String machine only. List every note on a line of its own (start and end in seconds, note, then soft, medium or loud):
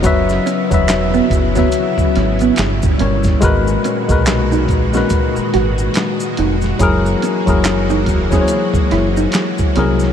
0.00 3.39 C#3 medium
0.00 2.53 B3 medium
0.00 3.39 E4 medium
0.04 2.55 F#3 medium
2.57 6.76 A#2 medium
2.57 3.41 G3 medium
3.41 6.77 D#3 medium
3.41 10.13 G#3 medium
3.41 10.13 F#4 medium
6.80 10.13 E3 medium
6.80 10.13 A#3 medium